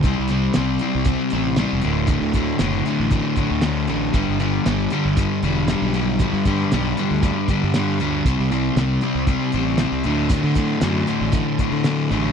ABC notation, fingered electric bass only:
X:1
M:4/4
L:1/16
Q:1/4=117
K:Clyd
V:1 name="Fingered electric bass" clef=bass
C,, C,,3 C,,2 z C,,2 z A,,,3 E,,, D,,,2- | D,,, D,,3 F,,,2 z A,,,2 z2 D,,3 A,,,2 | G,,, G,,,3 G,,,2 z G,,,2 z E,,,3 B,,,3- | B,,, G,,3 B,,,2 z D,,2 z2 G,,3 D,,2 |
C,, C,,3 C,,2 z C,,2 z A,,,3 C,, D,,2- | D,, D,3 F,,2 z A,,,2 z2 D,3 A,,,2 |]